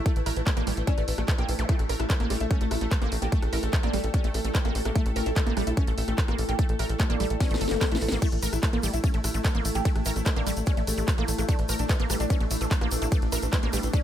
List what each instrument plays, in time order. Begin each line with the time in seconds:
Already playing: synth texture A3 E4, ambient pad E4 A4 A5
0.06 oud E3, synth arpeggio sound A3, kick, closed hi-hat
0.16 analog synth bass A1, oud E3, closed hi-hat
0.26 analog synth bass A1, oud E4, synth arpeggio sound A#4, cross-stick, open hi-hat
0.36 analog synth bass A1, oud E3, closed hi-hat
0.47 oud E3, synth arpeggio sound A3, kick, cross-stick, clap, closed hi-hat
0.57 analog synth bass A1, synth arpeggio sound A#3, oud C#4, closed hi-hat
0.67 analog synth bass A1, oud E3, synth arpeggio sound G3, open hi-hat
0.77 analog synth bass A1, oud E3, closed hi-hat
0.87 synth arpeggio sound C#4, oud D4, kick, closed hi-hat
0.98 analog synth bass A1, oud E3, synth arpeggio sound A3, cross-stick, closed hi-hat
1.08 analog synth bass A1, oud E3, open hi-hat
1.18 analog synth bass A1, synth arpeggio sound A3, cross-stick
1.28 oud E3, kick, clap, closed hi-hat
1.38 analog synth bass A#1, synth arpeggio sound A#3, oud G4, cross-stick, closed hi-hat
1.49 analog synth bass A#1, oud E3, open hi-hat
1.59 analog synth bass A#1, oud E3, synth arpeggio sound A3, closed hi-hat, zap
1.69 synth arpeggio sound A3, oud E4, synth texture A4, kick, closed hi-hat
1.79 analog synth bass A1, oud A3, cross-stick, closed hi-hat
1.89 analog synth bass A1, oud A3, synth arpeggio sound A#4, open hi-hat
2.00 analog synth bass A1, oud E4, ambient pad G5, cross-stick, closed hi-hat
2.10 synth arpeggio sound A3, oud A3, kick, clap, closed hi-hat
2.20 analog synth bass A1, oud A3, synth arpeggio sound A#3, cross-stick, closed hi-hat
2.30 analog synth bass A1, synth arpeggio sound G3, oud A3, open hi-hat
2.40 analog synth bass A#1, oud E4, closed hi-hat
2.51 oud A3, synth arpeggio sound C#4, kick, cross-stick, closed hi-hat
2.61 analog synth bass A1, synth arpeggio sound A3, oud A3, closed hi-hat
2.71 analog synth bass A1, oud E4, cross-stick, open hi-hat
2.81 analog synth bass A1, synth arpeggio sound A3, oud A3, closed hi-hat
2.91 oud A3, kick, cross-stick, clap, closed hi-hat
3.02 analog synth bass A1, synth arpeggio sound A#3, closed hi-hat
3.12 analog synth bass A1, oud A3, open hi-hat
3.22 analog synth bass A1, synth arpeggio sound A#3, oud G4, cross-stick, closed hi-hat
3.32 synth arpeggio sound A3, oud A3, kick, closed hi-hat
3.42 analog synth bass A1, oud A3, cross-stick, closed hi-hat
3.53 analog synth bass A1, oud E4, synth arpeggio sound A#4, open hi-hat
3.63 analog synth bass A1, oud A3, wobble bass A3, cross-stick, closed hi-hat
3.73 oud A3, synth arpeggio sound A3, kick, clap, closed hi-hat
3.83 analog synth bass A1, synth arpeggio sound A#3, oud D4, closed hi-hat
3.93 analog synth bass A1, synth arpeggio sound G3, oud A3, cross-stick, open hi-hat
4.04 analog synth bass A1, oud A3, closed hi-hat
4.14 synth arpeggio sound C#4, oud C#4, kick, cross-stick, closed hi-hat
4.24 analog synth bass A1, synth arpeggio sound A3, oud A3, closed hi-hat
4.34 analog synth bass A1, oud A3, cross-stick, open hi-hat
4.45 analog synth bass A1, synth arpeggio sound A3, closed hi-hat
4.55 oud A3, kick, clap, closed hi-hat
4.65 analog synth bass A1, oud A3, synth arpeggio sound A#3, cross-stick, closed hi-hat
4.75 analog synth bass A1, oud A3, open hi-hat
4.85 analog synth bass A1, oud A3, synth arpeggio sound A#3, cross-stick, closed hi-hat
4.96 synth arpeggio sound A3, oud E4, kick, closed hi-hat
5.06 analog synth bass A1, oud A3, cross-stick, closed hi-hat
5.16 analog synth bass A1, oud A3, synth arpeggio sound A#4, open hi-hat
5.26 analog synth bass A1, oud E4, closed hi-hat
5.36 oud A3, synth arpeggio sound A3, kick, cross-stick, clap, closed hi-hat
5.47 analog synth bass A1, oud A3, synth arpeggio sound A#3, closed hi-hat
5.57 analog synth bass A1, synth arpeggio sound G3, oud A3, cross-stick, open hi-hat
5.67 analog synth bass A#1, oud E4, closed hi-hat
5.77 oud A3, synth arpeggio sound C#4, kick, cross-stick, closed hi-hat
5.87 analog synth bass A1, oud A3, synth arpeggio sound A3, closed hi-hat
5.98 analog synth bass A1, oud E4, open hi-hat
6.08 analog synth bass A1, oud A3, synth arpeggio sound A3, cross-stick, closed hi-hat
6.18 oud A3, kick, clap, closed hi-hat
6.28 analog synth bass A1, synth arpeggio sound A#3, cross-stick, closed hi-hat
6.38 analog synth bass A1, oud A3, open hi-hat
6.49 analog synth bass A1, synth arpeggio sound A#3, oud G4, cross-stick, closed hi-hat
6.59 oud A3, synth arpeggio sound A3, kick, closed hi-hat
6.69 analog synth bass A1, oud A3, closed hi-hat
6.79 analog synth bass A1, oud E4, synth arpeggio sound A#4, cross-stick, open hi-hat
6.89 analog synth bass A1, oud A3, closed hi-hat
7.00 oud A3, synth arpeggio sound A3, kick, cross-stick, clap, closed hi-hat
7.10 analog synth bass A1, synth arpeggio sound A#3, oud D4, closed hi-hat
7.20 analog synth bass A1, synth arpeggio sound G3, oud A3, open hi-hat
7.30 analog synth bass A1, oud A3, closed hi-hat
7.40 oud C#4, synth arpeggio sound C#4, kick, snare, closed hi-hat, swell
7.51 analog synth bass A1, oud A3, synth arpeggio sound A3, snare, closed hi-hat
7.61 analog synth bass G1, oud A3, synth arpeggio sound A4, open hi-hat
7.68 analog synth bass G1, synth arpeggio sound A#3, snare, closed hi-hat
7.81 oud A3, synth arpeggio sound A#3, kick, snare, clap, closed hi-hat
7.91 analog synth bass A1, synth arpeggio sound A3, oud E4, snare, closed hi-hat
8.02 analog synth bass A1, oud A3, open hi-hat
8.09 analog synth bass A1, oud A3, synth arpeggio sound A#3, snare, closed hi-hat
8.22 synth arpeggio sound A3, synth texture A3 E4, oud E4, kick, closed hi-hat, crash, ride, shaker
8.32 analog synth bass A1, oud A3, cross-stick, closed hi-hat
8.42 analog synth bass A1, oud A3, synth arpeggio sound A#4, open hi-hat, ride, shaker
8.53 analog synth bass A1, oud E4, ambient pad A5, cross-stick, closed hi-hat, shaker
8.62 synth arpeggio sound A3, oud A3, kick, clap, closed hi-hat, ride, shaker
8.73 analog synth bass A1, oud A3, synth arpeggio sound A#3, cross-stick, closed hi-hat
8.83 analog synth bass A1, synth arpeggio sound G3, oud A3, open hi-hat, ride, shaker
8.94 analog synth bass A#1, oud E4, closed hi-hat, shaker
9.04 oud A3, synth arpeggio sound C#4, kick, cross-stick, closed hi-hat, ride, shaker
9.14 analog synth bass A1, synth arpeggio sound A3, oud A3, closed hi-hat
9.24 analog synth bass A1, oud E4, cross-stick, open hi-hat, ride, shaker
9.34 analog synth bass A1, synth arpeggio sound A3, oud A3, closed hi-hat, shaker
9.45 oud A3, kick, cross-stick, clap, closed hi-hat, ride, shaker
9.55 analog synth bass A1, synth arpeggio sound A#3, closed hi-hat
9.65 analog synth bass A1, oud A3, open hi-hat, ride, shaker
9.75 analog synth bass A1, synth arpeggio sound A#3, oud G4, cross-stick, closed hi-hat, shaker
9.85 synth arpeggio sound A3, oud A3, kick, closed hi-hat, ride, shaker
9.96 analog synth bass A1, oud A3, cross-stick, closed hi-hat
10.05 analog synth bass A1, oud E4, synth arpeggio sound A#4, open hi-hat, ride, shaker
10.16 analog synth bass A1, wobble bass A3, oud A3, cross-stick, closed hi-hat, shaker
10.26 synth arpeggio sound A3, oud A3, kick, clap, closed hi-hat, ride, shaker
10.36 analog synth bass A1, synth arpeggio sound A#3, oud D4, closed hi-hat
10.47 analog synth bass A1, synth arpeggio sound G3, oud A3, cross-stick, open hi-hat, ride, shaker
10.56 analog synth bass A1, oud A3, closed hi-hat, shaker
10.66 synth arpeggio sound C#4, oud C#4, kick, cross-stick, closed hi-hat, ride, shaker
10.77 analog synth bass A1, synth arpeggio sound A3, oud A3, closed hi-hat
10.87 analog synth bass A1, wobble bass G3, oud A3, cross-stick, open hi-hat, ride, shaker
10.98 analog synth bass A1, synth arpeggio sound A3, closed hi-hat, shaker
11.08 oud A3, kick, clap, closed hi-hat, ride, shaker
11.18 analog synth bass A1, oud A3, synth arpeggio sound A#3, cross-stick, closed hi-hat
11.28 analog synth bass A1, oud A3, open hi-hat, ride, shaker
11.38 analog synth bass A1, oud A3, synth arpeggio sound A#3, cross-stick, closed hi-hat, shaker
11.49 synth arpeggio sound A3, oud D4, synth texture D4, kick, closed hi-hat, ride, shaker
11.59 analog synth bass A1, oud E3, cross-stick, closed hi-hat
11.69 analog synth bass A1, oud E3, synth arpeggio sound A#4, open hi-hat, ride, shaker
11.79 analog synth bass A1, oud D4, closed hi-hat, shaker
11.89 oud E3, synth arpeggio sound A3, kick, cross-stick, clap, closed hi-hat, ride, shaker
12.00 analog synth bass A1, oud E3, synth arpeggio sound A#3, closed hi-hat
12.10 analog synth bass A1, oud E3, synth arpeggio sound G3, cross-stick, open hi-hat, ride, shaker
12.20 analog synth bass A#1, oud D4, closed hi-hat, shaker
12.30 oud E3, synth arpeggio sound C#4, kick, cross-stick, closed hi-hat, ride, shaker
12.40 analog synth bass A1, oud E3, synth arpeggio sound A3, closed hi-hat
12.51 analog synth bass A1, oud E4, open hi-hat, ride, shaker
12.61 analog synth bass A1, oud E3, synth arpeggio sound A3, cross-stick, closed hi-hat, shaker
12.71 oud E3, kick, clap, closed hi-hat, ride, shaker
12.81 analog synth bass A1, synth arpeggio sound A#3, cross-stick, closed hi-hat
12.91 analog synth bass A1, oud E3, open hi-hat, ride, shaker
13.02 analog synth bass A1, synth arpeggio sound A#3, oud E4, cross-stick, closed hi-hat, shaker
13.12 oud E3, synth arpeggio sound A3, kick, closed hi-hat, ride, shaker
13.22 analog synth bass A1, oud E3, closed hi-hat
13.32 analog synth bass A1, oud E4, synth arpeggio sound A#4, cross-stick, open hi-hat, ride, shaker
13.42 analog synth bass A1, oud E3, closed hi-hat, shaker
13.53 oud E3, synth arpeggio sound A3, kick, cross-stick, clap, closed hi-hat, ride, shaker
13.63 analog synth bass A1, synth arpeggio sound A#3, oud C#4, closed hi-hat
13.73 analog synth bass A1, oud E3, synth arpeggio sound G3, open hi-hat, ride, shaker
13.83 analog synth bass A1, oud E3, closed hi-hat, shaker
13.93 synth arpeggio sound C#4, oud D4, kick, closed hi-hat, ride, shaker